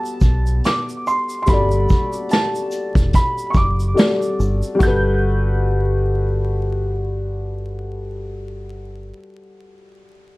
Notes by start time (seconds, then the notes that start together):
Already playing: G3 B3 F#4 A4 A5
0.05 shaker
0.21 B1, kick, shaker
0.47 shaker
0.64 D6, snare, closed hi-hat, shaker
0.89 shaker
1.07 C6, shaker
1.29 shaker
1.42 G3 C6
1.47 G1 F#4 A4 B5, kick, closed hi-hat, shaker
1.53 D5
1.71 shaker
1.89 kick, shaker
2.13 shaker
2.29 A5, closed hi-hat, shaker
2.33 snare
2.55 shaker
2.71 closed hi-hat, shaker
2.95 E1, kick, shaker
3.13 B5, kick, closed hi-hat, shaker
3.38 shaker
3.50 C#6, shaker
3.55 F#1 D6, kick
3.80 shaker
3.94 G3 F#4 A4 D5, closed hi-hat
3.98 snare, shaker
4.22 shaker
4.39 G1, shaker
4.62 shaker
4.75 G3
4.79 G1 F#4 G6, kick, shaker
4.83 A4
4.87 B4